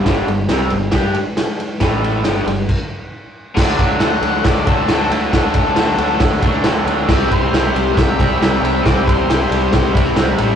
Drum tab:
CC |--------|----x---|x-------|--------|
RD |xxxxxxxx|xxxx----|-xxxxxxx|xxxxxxxx|
SD |o-o-o-o-|o-o-----|o-o-o-o-|o-o-o-o-|
BD |o---o---|o---o---|oo--oo--|oo--oo--|

CC |x-------|--------|
RD |-xxxxxxx|xxxxxxxx|
SD |o-o-o-o-|o-o-o-o-|
BD |oo--oo--|oo--oo--|